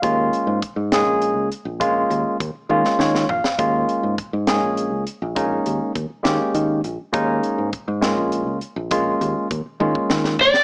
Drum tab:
HH |x-x-x-x-x-x-|x-x-x-------|x-x-x-x-x-x-|x-x-x-x-x-x-|
SD |------o-----|-------ooo-o|------o-----|------o-----|
T1 |------------|------o-----|------------|------------|
FT |------------|----------o-|------------|------------|
BD |o---o-------|o---o-------|o---o-------|o---o-------|

HH |x-x-x-x-x-x-|x-x-x-------|
SD |------o-----|--------oo-o|
T1 |------------|------o-----|
FT |------------|----------o-|
BD |o---o-------|o---o--o----|